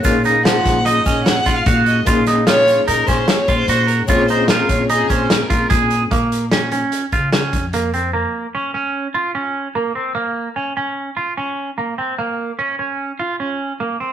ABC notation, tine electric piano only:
X:1
M:5/4
L:1/8
Q:1/4=148
K:Bbm
V:1 name="Tine electric piano"
[B,DEA]8- [B,DEA]2 | [B,DEA]8- [B,DEA]2 | [CDFA]8- [CDFA]2 | z8 z2 |
z8 z2 | z8 z2 | z8 z2 |]